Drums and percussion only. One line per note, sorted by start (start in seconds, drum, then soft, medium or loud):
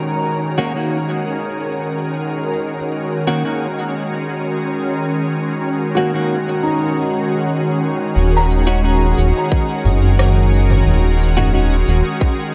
8.51 cabasa medium
9.18 cabasa medium
9.52 kick loud
9.85 mid tom medium
9.85 cabasa medium
10.19 cross-stick medium
10.53 cabasa medium
10.70 mid tom medium
11.21 cabasa medium
11.37 mid tom medium
11.87 cabasa medium
12.21 kick loud